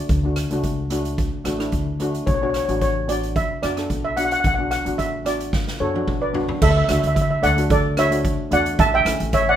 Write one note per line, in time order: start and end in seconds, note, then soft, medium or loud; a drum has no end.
0.00 0.88 D5 medium
0.09 0.43 D2 medium
0.09 kick medium
0.09 closed hi-hat medium
0.23 0.39 A3 medium
0.23 0.40 D4 medium
0.23 0.41 F#4 medium
0.36 cross-stick medium
0.36 closed hi-hat medium
0.51 1.28 C#2 medium
0.51 0.75 A3 medium
0.51 0.76 D4 medium
0.51 0.76 F#4 medium
0.51 closed hi-hat medium
0.63 kick medium
0.63 closed hi-hat medium
0.90 1.24 A3 medium
0.90 1.24 D4 medium
0.90 1.25 F#4 medium
0.90 closed hi-hat medium
1.05 closed hi-hat medium
1.18 kick medium
1.18 closed hi-hat medium
1.44 1.68 A1 medium
1.44 1.54 A3 medium
1.44 1.54 D4 medium
1.44 1.54 F#4 medium
1.44 cross-stick medium
1.44 closed hi-hat medium
1.58 1.84 A3 medium
1.58 1.84 D4 medium
1.58 1.85 E4 medium
1.58 cross-stick medium
1.58 closed hi-hat soft
1.72 2.17 D2 medium
1.72 kick medium
1.72 closed hi-hat soft
2.00 2.24 A3 medium
2.00 2.25 D4 medium
2.00 2.26 F#4 medium
2.00 closed hi-hat medium
2.15 closed hi-hat medium
2.26 2.61 B1 medium
2.26 2.33 C#5 medium
2.26 kick medium
2.26 closed hi-hat medium
2.35 2.42 C#5 medium
2.41 2.57 B3 medium
2.41 2.58 D4 medium
2.41 2.58 F#4 medium
2.41 2.48 C#5 medium
2.50 2.56 C#5 medium
2.54 2.64 C#5 medium
2.54 cross-stick medium
2.54 closed hi-hat medium
2.65 3.45 A1 medium
2.65 2.93 B3 medium
2.65 2.73 C#5 medium
2.65 closed hi-hat soft
2.69 2.93 D4 medium
2.69 2.94 F#4 medium
2.81 3.10 C#5 medium
2.81 kick medium
2.81 closed hi-hat medium
3.08 3.41 B3 medium
3.08 3.42 D4 medium
3.08 3.42 F#4 medium
3.08 3.37 D5 medium
3.08 closed hi-hat medium
3.23 closed hi-hat soft
3.36 3.64 E5 medium
3.36 kick medium
3.36 closed hi-hat soft
3.62 3.85 F#2 medium
3.62 3.71 B3 medium
3.62 3.72 D4 medium
3.62 3.73 F#4 medium
3.62 4.06 D5 medium
3.62 cross-stick medium
3.62 closed hi-hat medium
3.77 4.01 B3 medium
3.77 4.02 D4 medium
3.77 4.02 A4 medium
3.77 cross-stick medium
3.77 closed hi-hat soft
3.90 4.34 B1 medium
3.90 kick medium
3.90 closed hi-hat soft
4.05 4.18 E5 medium
4.17 4.42 B3 medium
4.17 4.42 D4 medium
4.17 4.43 F#4 medium
4.17 4.24 F#5 medium
4.17 closed hi-hat medium
4.25 4.31 F#5 medium
4.31 4.39 F#5 medium
4.31 closed hi-hat medium
4.40 4.46 F#5 medium
4.40 closed hi-hat medium
4.44 4.78 B1 medium
4.44 4.53 F#5 medium
4.44 kick loud
4.54 4.74 B3 medium
4.54 4.63 F#5 medium
4.59 4.75 D4 medium
4.59 4.75 F#4 medium
4.71 4.83 F#5 medium
4.71 cross-stick medium
4.71 closed hi-hat medium
4.85 5.63 A1 medium
4.85 5.10 B3 medium
4.85 5.10 D4 medium
4.85 5.11 F#4 medium
4.85 closed hi-hat medium
4.98 5.27 E5 medium
4.98 kick medium
4.98 closed hi-hat medium
5.25 5.59 B3 medium
5.25 5.59 D4 medium
5.25 5.60 F#4 medium
5.25 6.04 D5 medium
5.25 cross-stick medium
5.25 closed hi-hat medium
5.40 closed hi-hat medium
5.53 kick medium
5.53 snare soft
5.67 snare soft
5.80 6.03 F#2 medium
5.80 5.89 B3 medium
5.80 5.89 D4 medium
5.80 5.90 F#4 medium
5.80 6.19 A4 medium
5.80 6.23 C#5 medium
5.94 6.19 B3 medium
5.94 6.19 D4 medium
5.94 6.20 F#4 medium
5.94 high tom medium
6.08 6.52 B1 medium
6.08 kick medium
6.08 mid tom medium
6.22 6.59 B4 medium
6.22 6.59 D5 medium
6.33 6.59 B3 medium
6.33 6.59 D4 medium
6.33 6.60 F#4 medium
6.33 floor tom medium
6.49 floor tom medium
6.62 6.84 D2 loud
6.62 6.70 A4 medium
6.62 6.69 E5 medium
6.62 kick loud
6.62 crash loud
6.71 6.76 E5 medium
6.77 6.83 E5 medium
6.84 7.21 A3 medium
6.84 6.91 E5 medium
6.89 7.01 D2 medium
6.89 7.22 D4 medium
6.89 7.22 F#4 medium
6.89 6.98 E5 medium
6.89 cross-stick medium
6.89 closed hi-hat medium
7.00 7.36 D2 medium
7.00 7.06 E5 medium
7.00 closed hi-hat medium
7.07 7.14 E5 medium
7.15 7.20 E5 medium
7.15 kick medium
7.15 closed hi-hat medium
7.21 7.29 E5 medium
7.31 7.38 E5 medium
7.42 8.31 D2 medium
7.42 7.51 A3 medium
7.42 7.52 D4 medium
7.42 7.52 A4 medium
7.42 7.68 D5 medium
7.42 7.69 F#5 medium
7.42 closed hi-hat medium
7.56 7.81 A3 medium
7.56 7.82 D4 medium
7.56 7.82 F#4 medium
7.56 closed hi-hat medium
7.70 7.96 A4 medium
7.70 7.99 D5 medium
7.70 kick loud
7.70 closed hi-hat medium
7.96 8.06 A3 medium
7.96 8.06 D4 medium
7.96 8.07 F#4 medium
7.96 8.48 C#5 medium
7.96 8.54 E5 medium
7.96 cross-stick medium
7.96 closed hi-hat medium
8.10 8.35 A3 medium
8.10 8.36 D4 medium
8.10 8.36 F#4 medium
8.10 closed hi-hat medium
8.25 kick medium
8.25 closed hi-hat medium
8.51 8.74 E2 medium
8.51 8.78 A3 medium
8.51 8.79 D4 medium
8.51 8.80 F#4 medium
8.51 8.78 D5 medium
8.51 8.80 F#5 medium
8.51 closed hi-hat medium
8.66 closed hi-hat medium
8.79 9.01 A1 loud
8.79 8.93 E5 medium
8.79 8.93 A5 loud
8.79 kick loud
8.79 closed hi-hat medium
8.94 9.31 E5 medium
8.94 9.35 G5 loud
9.05 9.17 A1 medium
9.05 9.38 A3 medium
9.05 9.39 C#4 medium
9.05 9.39 E4 medium
9.05 cross-stick medium
9.05 closed hi-hat medium
9.20 9.52 A1 medium
9.20 closed hi-hat medium
9.33 9.47 C#5 medium
9.33 9.48 E5 medium
9.33 kick medium
9.33 closed hi-hat medium
9.49 9.56 D5 medium
9.49 9.56 F#5 loud